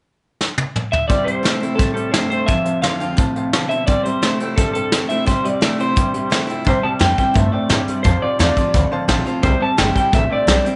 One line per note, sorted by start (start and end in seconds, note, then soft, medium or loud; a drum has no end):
0.41 snare medium
0.58 high tom medium
0.76 mid tom medium
0.92 1.07 E5 loud
0.92 floor tom medium
1.08 1.25 C3 medium
1.08 1.76 C3 medium
1.08 1.25 G3 medium
1.08 1.20 C5 medium
1.08 1.27 D5 medium
1.08 1.20 E5 medium
1.08 1.20 G5 loud
1.08 kick loud
1.08 closed hi-hat medium
1.24 1.42 C3 medium
1.24 1.43 G3 medium
1.24 1.74 C5 medium
1.24 1.37 C5 medium
1.24 1.37 E5 medium
1.24 1.38 G5 medium
1.24 closed hi-hat medium
1.43 1.59 C3 medium
1.43 1.60 E3 medium
1.43 1.60 A3 medium
1.43 1.61 A3 medium
1.43 1.61 C4 medium
1.43 1.59 E4 medium
1.43 1.54 C5 medium
1.43 1.54 E5 medium
1.43 1.54 G5 medium
1.43 snare loud
1.43 closed hi-hat medium
1.60 1.76 C3 medium
1.60 1.77 A3 medium
1.60 1.79 C4 soft
1.60 1.78 E4 medium
1.60 1.72 C5 medium
1.60 1.73 E5 medium
1.60 1.73 G5 medium
1.60 closed hi-hat medium
1.75 1.94 C3 medium
1.75 1.94 G3 medium
1.75 1.93 A4 medium
1.75 1.89 C5 loud
1.75 1.89 E5 medium
1.75 1.89 G5 loud
1.75 kick loud
1.75 closed hi-hat loud
1.80 2.13 A2 medium
1.94 2.12 C3 medium
1.94 2.12 G3 medium
1.94 2.11 A4 medium
1.94 2.06 C5 medium
1.94 2.06 E5 medium
1.94 2.07 G5 medium
1.94 closed hi-hat medium
2.11 2.47 G2 medium
2.11 2.29 C3 medium
2.11 2.30 A3 medium
2.11 2.29 C5 loud
2.11 2.24 C5 medium
2.11 2.24 E5 medium
2.11 2.25 G5 medium
2.11 snare loud
2.11 closed hi-hat medium
2.30 2.47 C3 medium
2.30 2.47 A3 medium
2.30 2.49 C5 loud
2.30 2.42 C5 medium
2.30 2.42 E5 medium
2.30 2.42 G5 medium
2.30 closed hi-hat medium
2.46 3.14 F2 medium
2.46 2.65 F2 medium
2.46 2.65 C3 medium
2.46 2.58 C5 medium
2.46 2.80 E5 medium
2.46 2.58 F5 medium
2.46 2.58 A5 loud
2.46 kick loud
2.46 closed hi-hat medium
2.64 2.82 F2 medium
2.64 2.82 C3 medium
2.64 2.76 C5 medium
2.64 2.76 F5 medium
2.64 2.76 A5 medium
2.64 closed hi-hat medium
2.82 2.99 F2 medium
2.82 3.00 D3 medium
2.82 2.99 D3 loud
2.82 3.00 A3 medium
2.82 3.00 C4 medium
2.82 2.99 F4 medium
2.82 2.93 C5 medium
2.82 3.69 F5 medium
2.82 2.94 F5 medium
2.82 2.94 C6 medium
2.82 snare loud
2.82 closed hi-hat medium
3.00 3.17 F2 medium
3.00 3.17 D3 medium
3.00 3.18 C4 soft
3.00 3.17 F4 medium
3.00 3.11 C5 medium
3.00 3.11 F5 medium
3.00 3.11 A5 medium
3.00 closed hi-hat medium
3.17 3.34 F2 medium
3.17 3.51 A2 medium
3.17 3.35 C3 medium
3.17 3.29 C5 medium
3.17 3.29 F5 medium
3.17 3.29 A5 loud
3.17 kick loud
3.17 closed hi-hat medium
3.36 3.52 F2 medium
3.36 3.52 C3 medium
3.36 3.46 C5 medium
3.36 3.46 F5 medium
3.36 3.47 A5 medium
3.36 closed hi-hat medium
3.53 3.69 F2 medium
3.53 3.86 B2 medium
3.53 3.69 D3 medium
3.53 3.64 C5 medium
3.53 3.64 F5 medium
3.53 3.64 A5 loud
3.53 snare loud
3.53 closed hi-hat medium
3.69 3.86 F2 medium
3.69 3.87 D3 medium
3.69 3.81 C5 medium
3.69 3.86 E5 loud
3.69 3.81 F5 medium
3.69 3.81 A5 medium
3.69 closed hi-hat medium
3.87 4.54 C3 medium
3.87 4.04 C3 medium
3.87 4.04 G3 medium
3.87 3.98 C5 loud
3.87 4.03 D5 loud
3.87 3.98 E5 medium
3.87 3.99 G5 loud
3.87 kick loud
3.87 closed hi-hat medium
4.03 4.21 C3 medium
4.03 4.21 G3 medium
4.03 4.39 C5 medium
4.03 4.16 C5 medium
4.03 4.16 E5 medium
4.03 4.16 G5 medium
4.03 closed hi-hat medium
4.22 4.38 C3 medium
4.22 4.39 E3 medium
4.22 4.39 A3 medium
4.22 4.40 C4 medium
4.22 4.39 E4 medium
4.22 4.34 C5 medium
4.22 4.34 E5 medium
4.22 4.34 G5 medium
4.22 snare medium
4.22 closed hi-hat medium
4.40 4.56 C3 medium
4.40 4.56 A3 medium
4.40 4.58 C4 soft
4.40 4.57 E4 soft
4.40 4.51 C5 medium
4.40 4.51 E5 medium
4.40 4.52 G5 medium
4.40 closed hi-hat medium
4.56 5.24 G2 medium
4.56 4.73 C3 medium
4.56 4.73 G3 medium
4.56 4.72 A4 medium
4.56 4.69 C5 loud
4.56 4.69 E5 medium
4.56 4.69 A5 loud
4.56 kick loud
4.56 closed hi-hat loud
4.73 4.91 C3 medium
4.73 4.91 G3 medium
4.73 5.06 A4 loud
4.73 4.85 C5 medium
4.73 4.86 E5 medium
4.73 4.86 G5 medium
4.73 closed hi-hat medium
4.92 5.08 C3 medium
4.92 5.09 E3 medium
4.92 5.08 A3 medium
4.92 5.10 A3 medium
4.92 5.10 C4 medium
4.92 5.09 E4 medium
4.92 5.03 C5 medium
4.92 5.03 E5 medium
4.92 5.03 G5 medium
4.92 snare loud
4.92 closed hi-hat medium
5.09 5.26 C3 medium
5.09 5.26 A3 medium
5.09 5.27 C4 medium
5.09 5.27 E4 medium
5.09 5.20 C5 medium
5.09 5.25 E5 medium
5.09 5.20 E5 medium
5.09 5.20 G5 medium
5.09 closed hi-hat medium
5.26 5.93 C3 medium
5.26 5.43 C3 medium
5.26 5.43 G3 medium
5.26 5.45 C5 medium
5.26 5.37 C5 medium
5.26 5.37 E5 medium
5.26 5.38 G5 loud
5.26 kick loud
5.26 closed hi-hat medium
5.44 5.60 C3 medium
5.44 5.61 G3 medium
5.44 5.55 C5 medium
5.44 5.79 D5 medium
5.44 5.55 E5 medium
5.44 5.55 G5 medium
5.44 closed hi-hat medium
5.61 5.77 C3 medium
5.61 5.78 E3 medium
5.61 5.78 A3 medium
5.61 5.79 C4 medium
5.61 5.77 E4 medium
5.61 5.73 C5 medium
5.61 5.73 E5 medium
5.61 5.73 G5 medium
5.61 snare loud
5.61 closed hi-hat medium
5.78 5.95 C3 medium
5.78 5.95 A3 medium
5.78 5.96 C4 soft
5.78 5.95 E4 medium
5.78 5.90 C5 medium
5.78 6.45 C5 medium
5.78 5.90 E5 medium
5.78 5.90 G5 medium
5.78 closed hi-hat medium
5.96 6.62 G2 medium
5.96 6.12 C3 medium
5.96 6.12 G3 medium
5.96 6.07 C5 medium
5.96 6.08 E5 medium
5.96 6.08 G5 loud
5.96 kick loud
5.96 closed hi-hat medium
6.14 6.29 C3 medium
6.14 6.30 G3 medium
6.14 6.25 C5 medium
6.14 6.25 E5 medium
6.14 6.25 G5 medium
6.14 closed hi-hat medium
6.30 6.47 C3 medium
6.30 6.47 E3 medium
6.30 6.48 A3 medium
6.30 6.47 A3 medium
6.30 6.47 C4 medium
6.30 6.46 E4 medium
6.30 6.42 C5 medium
6.30 6.42 E5 medium
6.30 6.42 G5 loud
6.30 snare loud
6.30 closed hi-hat medium
6.47 6.64 C3 medium
6.47 6.65 A3 medium
6.47 6.65 C4 soft
6.47 6.64 E4 medium
6.47 6.59 C5 medium
6.47 6.60 E5 medium
6.47 6.60 G5 medium
6.47 closed hi-hat medium
6.65 7.31 C3 medium
6.65 6.82 C3 medium
6.65 6.82 G3 loud
6.65 6.77 C5 loud
6.65 6.85 C5 loud
6.65 6.77 E5 medium
6.65 6.77 G5 loud
6.65 kick loud
6.65 closed hi-hat medium
6.83 6.99 C3 medium
6.83 6.99 G3 medium
6.83 6.94 C5 medium
6.83 6.94 E5 medium
6.83 6.95 G5 medium
6.83 6.88 A5 medium
6.83 muted upright bass stroke medium
6.99 7.17 F2 medium
6.99 7.16 C3 medium
6.99 7.17 E3 loud
6.99 7.17 G3 medium
6.99 7.17 A3 medium
6.99 7.16 C4 loud
6.99 7.15 E4 medium
6.99 7.11 C5 medium
6.99 7.12 E5 medium
6.99 7.17 G5 medium
6.99 snare medium
6.99 closed hi-hat medium
7.16 7.33 C3 medium
7.16 7.34 G3 medium
7.16 7.34 C4 soft
7.16 7.34 E4 medium
7.16 7.29 C5 medium
7.16 7.29 E5 medium
7.16 7.35 G5 loud
7.16 7.29 G5 medium
7.16 kick medium
7.16 closed hi-hat medium
7.34 7.52 G2 medium
7.34 7.68 A2 medium
7.34 7.51 C3 medium
7.34 7.51 A3 loud
7.34 7.46 C5 medium
7.34 7.52 E5 loud
7.34 7.46 E5 medium
7.34 7.46 A5 medium
7.34 kick loud
7.34 closed hi-hat medium
7.52 7.68 C3 medium
7.52 7.68 A3 medium
7.52 7.63 C5 medium
7.52 8.04 D5 loud
7.52 7.63 E5 medium
7.52 7.63 G5 loud
7.52 muted upright bass stroke medium
7.69 8.03 G2 medium
7.69 7.86 A2 medium
7.69 7.85 C3 medium
7.69 7.86 G3 medium
7.69 7.80 C5 medium
7.69 7.80 E5 medium
7.69 7.81 G5 loud
7.69 snare loud
7.69 closed hi-hat medium
7.86 8.03 C3 medium
7.86 8.03 G3 medium
7.86 7.99 C5 medium
7.86 7.99 E5 medium
7.86 7.99 G5 medium
7.86 muted upright bass stroke medium
7.86 closed hi-hat medium
8.03 8.70 F2 medium
8.03 8.20 F2 medium
8.03 8.21 F2 medium
8.03 8.21 C3 medium
8.03 8.22 C5 loud
8.03 8.15 C5 loud
8.03 8.16 F5 medium
8.03 8.15 A5 loud
8.03 kick loud
8.03 closed hi-hat medium
8.22 8.38 F2 medium
8.22 8.38 C3 medium
8.22 8.33 C5 medium
8.22 8.38 D5 medium
8.22 8.33 F5 medium
8.22 8.33 C6 medium
8.22 muted upright bass stroke medium
8.39 8.56 E2 medium
8.39 8.55 F2 medium
8.39 8.56 C3 medium
8.39 8.56 D3 medium
8.39 8.56 A3 loud
8.39 8.56 C4 loud
8.39 8.54 F4 loud
8.39 8.50 C5 medium
8.39 9.05 D5 medium
8.39 8.50 F5 medium
8.39 8.51 A5 medium
8.39 snare loud
8.39 closed hi-hat medium
8.55 8.72 F2 medium
8.55 8.73 C3 medium
8.55 8.74 C4 soft
8.55 8.73 F4 medium
8.55 8.68 C5 medium
8.55 8.68 F5 medium
8.55 8.68 A5 medium
8.55 kick medium
8.55 closed hi-hat medium
8.74 8.90 D2 medium
8.74 8.89 F2 medium
8.74 9.40 A2 medium
8.74 8.90 D3 medium
8.74 8.85 C5 medium
8.74 8.85 F5 medium
8.74 8.85 B5 medium
8.74 kick loud
8.74 closed hi-hat medium
8.90 9.07 F2 medium
8.90 9.07 D3 medium
8.90 9.02 C5 loud
8.90 9.02 F5 loud
8.90 9.03 A5 loud
8.90 muted upright bass stroke medium
9.08 9.25 A1 medium
9.08 9.24 F2 medium
9.08 9.24 C3 medium
9.08 9.25 D3 medium
9.08 9.26 A3 medium
9.08 9.26 C4 medium
9.08 9.25 F4 loud
9.08 9.19 C5 loud
9.08 9.19 F5 loud
9.08 9.19 A5 loud
9.08 snare loud
9.08 closed hi-hat medium
9.26 9.42 F2 medium
9.26 9.41 C3 medium
9.26 9.44 C4 soft
9.26 9.43 F4 medium
9.26 9.37 C5 medium
9.26 9.37 F5 medium
9.26 9.38 A5 medium
9.26 muted upright bass stroke medium
9.26 closed hi-hat medium
9.42 9.60 C2 loud
9.42 9.59 C3 medium
9.42 10.09 C3 medium
9.42 9.59 G3 loud
9.42 9.61 C5 loud
9.42 9.54 C5 medium
9.42 9.54 E5 medium
9.42 9.55 G5 loud
9.42 kick loud
9.42 closed hi-hat medium
9.60 9.76 C3 medium
9.60 9.76 G3 medium
9.60 9.71 C5 medium
9.60 9.72 E5 medium
9.60 9.72 G5 medium
9.60 9.78 A5 medium
9.60 muted upright bass stroke medium
9.77 9.95 G1 medium
9.77 9.93 C3 medium
9.77 9.95 E3 medium
9.77 9.93 G3 loud
9.77 9.95 A3 medium
9.77 9.95 C4 medium
9.77 9.95 E4 medium
9.77 9.89 C5 medium
9.77 9.89 E5 medium
9.77 9.95 G5 loud
9.77 9.89 G5 medium
9.77 snare loud
9.77 closed hi-hat medium
9.94 10.11 C3 medium
9.94 10.11 G3 medium
9.94 10.13 C4 soft
9.94 10.13 E4 medium
9.94 10.06 C5 medium
9.94 10.06 E5 medium
9.94 10.12 G5 medium
9.94 10.06 A5 medium
9.94 muted upright bass stroke medium
9.94 kick medium
9.94 closed hi-hat medium
10.12 10.29 A1 loud
10.12 10.76 G2 medium
10.12 10.28 C3 medium
10.12 10.28 A3 medium
10.12 10.24 C5 medium
10.12 10.24 E5 medium
10.12 10.32 E5 medium
10.12 10.24 G5 medium
10.12 kick loud
10.12 closed hi-hat medium
10.30 10.46 C3 medium
10.30 10.46 A3 medium
10.30 10.41 C5 medium
10.30 10.76 D5 loud
10.30 10.41 E5 medium
10.30 10.41 G5 medium
10.30 muted upright bass stroke medium
10.47 10.64 B1 loud
10.47 10.63 C3 medium
10.47 10.64 E3 medium
10.47 10.63 G3 medium
10.47 10.64 A3 medium
10.47 10.64 C4 medium
10.47 10.64 E4 loud
10.47 10.59 C5 medium
10.47 10.59 E5 medium
10.47 10.59 G5 loud
10.47 snare loud
10.47 closed hi-hat medium
10.65 10.76 C3 medium
10.65 10.76 G3 medium
10.65 10.76 C4 medium
10.65 10.76 E4 medium
10.65 10.76 C5 medium
10.65 10.76 E5 medium
10.65 10.76 G5 medium
10.65 muted upright bass stroke medium
10.65 closed hi-hat medium